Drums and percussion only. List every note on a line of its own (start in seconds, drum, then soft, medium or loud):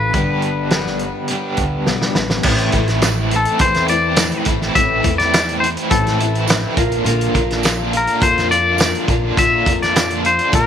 0.14 kick loud
0.14 closed hi-hat medium
0.42 closed hi-hat medium
0.70 snare medium
0.70 closed hi-hat medium
0.87 snare soft
0.99 closed hi-hat soft
1.28 closed hi-hat medium
1.57 kick medium
1.57 closed hi-hat medium
1.86 snare medium
2.02 snare medium
2.15 snare medium
2.30 snare medium
2.43 kick medium
2.43 crash loud
2.58 closed hi-hat soft
2.72 kick medium
2.72 closed hi-hat medium
2.87 snare soft
2.87 closed hi-hat soft
3.02 snare medium
3.02 closed hi-hat medium
3.02 tambourine medium
3.31 closed hi-hat medium
3.45 closed hi-hat soft
3.59 kick loud
3.59 closed hi-hat loud
3.74 snare soft
3.74 closed hi-hat soft
3.88 closed hi-hat medium
4.16 snare loud
4.16 closed hi-hat loud
4.16 tambourine medium
4.32 closed hi-hat soft
4.45 kick medium
4.45 closed hi-hat medium
4.62 snare soft
4.75 kick loud
4.75 closed hi-hat loud
5.04 kick medium
5.04 closed hi-hat medium
5.19 snare soft
5.19 closed hi-hat soft
5.33 snare loud
5.33 closed hi-hat loud
5.33 tambourine medium
5.49 closed hi-hat soft
5.64 closed hi-hat medium
5.77 closed hi-hat soft
5.91 kick loud
5.91 closed hi-hat loud
6.07 snare soft
6.07 closed hi-hat soft
6.20 closed hi-hat medium
6.35 closed hi-hat soft
6.48 snare loud
6.48 closed hi-hat loud
6.48 tambourine loud
6.77 kick loud
6.77 closed hi-hat medium
6.92 closed hi-hat soft
7.06 closed hi-hat medium
7.21 closed hi-hat medium
7.35 kick medium
7.35 closed hi-hat medium
7.51 snare soft
7.51 closed hi-hat soft
7.63 snare loud
7.63 closed hi-hat medium
7.63 tambourine medium
7.93 closed hi-hat medium
8.07 closed hi-hat soft
8.22 kick loud
8.22 closed hi-hat loud
8.38 snare soft
8.38 closed hi-hat soft
8.51 closed hi-hat medium
8.78 snare loud
8.78 closed hi-hat loud
8.78 tambourine loud
8.95 closed hi-hat soft
9.08 kick medium
9.08 closed hi-hat medium
9.37 kick loud
9.37 closed hi-hat loud
9.66 kick medium
9.66 closed hi-hat medium
9.82 snare soft
9.82 closed hi-hat soft
9.96 snare loud
9.96 closed hi-hat medium
9.96 tambourine loud
10.10 closed hi-hat soft
10.25 closed hi-hat medium
10.39 closed hi-hat soft
10.53 kick loud
10.53 closed hi-hat loud